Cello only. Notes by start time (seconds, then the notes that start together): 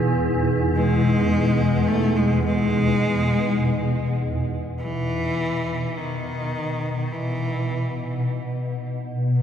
0.76 G#3
1.88 A3
2.17 G#3
2.45 G#3
4.80 E3
5.97 D#3
7.12 E3
9.39 D#3